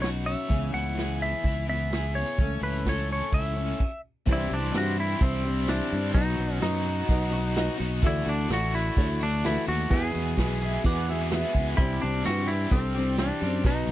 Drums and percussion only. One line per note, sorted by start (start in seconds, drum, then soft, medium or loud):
0.03 snare loud
0.03 closed hi-hat medium
0.27 closed hi-hat medium
0.50 kick loud
0.50 closed hi-hat medium
0.73 closed hi-hat medium
0.87 snare soft
0.98 snare medium
0.98 closed hi-hat medium
1.21 closed hi-hat medium
1.44 kick loud
1.44 closed hi-hat medium
1.68 closed hi-hat medium
1.92 snare loud
1.92 closed hi-hat medium
2.16 closed hi-hat medium
2.38 kick loud
2.38 closed hi-hat medium
2.62 closed hi-hat medium
2.86 kick medium
2.86 snare loud
2.86 closed hi-hat medium
3.10 closed hi-hat medium
3.32 kick loud
3.32 closed hi-hat medium
3.56 closed hi-hat medium
3.80 kick loud
3.80 crash medium
4.27 kick loud
4.27 crash loud
4.27 shaker medium
4.51 ride medium
4.51 shaker medium
4.73 snare loud
4.73 ride medium
4.73 shaker medium
4.98 ride medium
4.98 shaker medium
5.21 kick loud
5.21 ride medium
5.21 shaker medium
5.44 ride medium
5.67 snare loud
5.67 ride loud
5.67 shaker loud
5.91 ride medium
5.91 shaker medium
6.14 kick loud
6.14 ride loud
6.14 shaker medium
6.38 ride medium
6.38 shaker medium
6.61 snare loud
6.61 ride loud
6.61 shaker loud
6.85 ride medium
6.85 shaker medium
7.09 kick loud
7.09 ride loud
7.09 shaker loud
7.32 ride medium
7.32 shaker medium
7.55 snare loud
7.55 ride loud
7.55 shaker loud
7.79 ride medium
7.79 shaker medium
8.02 kick loud
8.02 crash loud
8.02 shaker loud
8.26 snare soft
8.26 ride medium
8.26 shaker medium
8.50 snare loud
8.50 ride medium
8.50 shaker loud
8.73 ride medium
8.73 shaker medium
8.97 kick loud
8.97 ride loud
8.97 shaker loud
9.20 ride medium
9.20 shaker medium
9.44 snare loud
9.44 ride loud
9.44 shaker loud
9.67 ride medium
9.67 shaker medium
9.91 kick loud
9.91 ride loud
9.91 shaker medium
10.15 snare soft
10.15 ride medium
10.15 shaker medium
10.37 kick medium
10.37 snare loud
10.37 ride loud
10.37 shaker loud
10.61 ride medium
10.61 shaker medium
10.84 kick loud
10.84 ride loud
10.84 shaker medium
11.08 ride medium
11.31 snare loud
11.31 ride loud
11.31 shaker loud
11.54 kick medium
11.54 ride medium
11.54 shaker medium
11.76 kick loud
11.76 crash loud
11.76 shaker medium
12.00 snare soft
12.00 ride medium
12.00 shaker medium
12.24 snare loud
12.24 ride loud
12.24 shaker medium
12.47 ride medium
12.47 shaker medium
12.71 kick loud
12.71 ride loud
12.71 shaker medium
12.94 ride medium
12.94 shaker medium
13.18 snare loud
13.18 ride loud
13.18 shaker medium
13.41 ride medium
13.41 shaker medium
13.64 kick loud
13.64 ride loud
13.64 shaker medium
13.87 ride medium
13.87 shaker medium